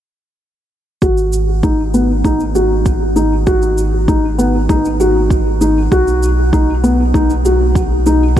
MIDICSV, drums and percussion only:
0, 0, Header, 1, 2, 480
1, 0, Start_track
1, 0, Key_signature, 5, "minor"
1, 0, Tempo, 612245
1, 800, Time_signature, 4, 2, 24, 8
1, 6584, End_track
2, 0, Start_track
2, 0, Title_t, "Drums"
2, 799, Note_on_c, 9, 36, 88
2, 801, Note_on_c, 9, 82, 36
2, 878, Note_off_c, 9, 36, 0
2, 880, Note_off_c, 9, 82, 0
2, 921, Note_on_c, 9, 82, 23
2, 1000, Note_off_c, 9, 82, 0
2, 1041, Note_on_c, 9, 82, 54
2, 1119, Note_off_c, 9, 82, 0
2, 1280, Note_on_c, 9, 36, 88
2, 1280, Note_on_c, 9, 82, 36
2, 1358, Note_off_c, 9, 36, 0
2, 1359, Note_off_c, 9, 82, 0
2, 1521, Note_on_c, 9, 82, 51
2, 1600, Note_off_c, 9, 82, 0
2, 1760, Note_on_c, 9, 36, 79
2, 1761, Note_on_c, 9, 82, 34
2, 1838, Note_off_c, 9, 36, 0
2, 1840, Note_off_c, 9, 82, 0
2, 1881, Note_on_c, 9, 82, 23
2, 1960, Note_off_c, 9, 82, 0
2, 2002, Note_on_c, 9, 82, 48
2, 2080, Note_off_c, 9, 82, 0
2, 2240, Note_on_c, 9, 36, 90
2, 2240, Note_on_c, 9, 82, 35
2, 2318, Note_off_c, 9, 82, 0
2, 2319, Note_off_c, 9, 36, 0
2, 2480, Note_on_c, 9, 82, 51
2, 2558, Note_off_c, 9, 82, 0
2, 2720, Note_on_c, 9, 36, 94
2, 2720, Note_on_c, 9, 82, 35
2, 2798, Note_off_c, 9, 36, 0
2, 2798, Note_off_c, 9, 82, 0
2, 2840, Note_on_c, 9, 82, 24
2, 2919, Note_off_c, 9, 82, 0
2, 2961, Note_on_c, 9, 82, 51
2, 3040, Note_off_c, 9, 82, 0
2, 3200, Note_on_c, 9, 36, 92
2, 3202, Note_on_c, 9, 82, 37
2, 3278, Note_off_c, 9, 36, 0
2, 3281, Note_off_c, 9, 82, 0
2, 3443, Note_on_c, 9, 82, 56
2, 3521, Note_off_c, 9, 82, 0
2, 3679, Note_on_c, 9, 36, 95
2, 3682, Note_on_c, 9, 82, 37
2, 3758, Note_off_c, 9, 36, 0
2, 3761, Note_off_c, 9, 82, 0
2, 3803, Note_on_c, 9, 82, 27
2, 3881, Note_off_c, 9, 82, 0
2, 3923, Note_on_c, 9, 82, 52
2, 4001, Note_off_c, 9, 82, 0
2, 4159, Note_on_c, 9, 36, 91
2, 4163, Note_on_c, 9, 82, 35
2, 4237, Note_off_c, 9, 36, 0
2, 4242, Note_off_c, 9, 82, 0
2, 4401, Note_on_c, 9, 82, 57
2, 4479, Note_off_c, 9, 82, 0
2, 4639, Note_on_c, 9, 36, 87
2, 4641, Note_on_c, 9, 82, 36
2, 4717, Note_off_c, 9, 36, 0
2, 4720, Note_off_c, 9, 82, 0
2, 4762, Note_on_c, 9, 82, 26
2, 4841, Note_off_c, 9, 82, 0
2, 4883, Note_on_c, 9, 82, 58
2, 4961, Note_off_c, 9, 82, 0
2, 5119, Note_on_c, 9, 36, 100
2, 5123, Note_on_c, 9, 82, 41
2, 5197, Note_off_c, 9, 36, 0
2, 5202, Note_off_c, 9, 82, 0
2, 5363, Note_on_c, 9, 82, 56
2, 5441, Note_off_c, 9, 82, 0
2, 5600, Note_on_c, 9, 36, 91
2, 5605, Note_on_c, 9, 82, 37
2, 5678, Note_off_c, 9, 36, 0
2, 5684, Note_off_c, 9, 82, 0
2, 5723, Note_on_c, 9, 82, 27
2, 5801, Note_off_c, 9, 82, 0
2, 5843, Note_on_c, 9, 82, 54
2, 5921, Note_off_c, 9, 82, 0
2, 6079, Note_on_c, 9, 36, 95
2, 6084, Note_on_c, 9, 82, 41
2, 6157, Note_off_c, 9, 36, 0
2, 6162, Note_off_c, 9, 82, 0
2, 6322, Note_on_c, 9, 82, 55
2, 6400, Note_off_c, 9, 82, 0
2, 6559, Note_on_c, 9, 36, 92
2, 6584, Note_off_c, 9, 36, 0
2, 6584, End_track
0, 0, End_of_file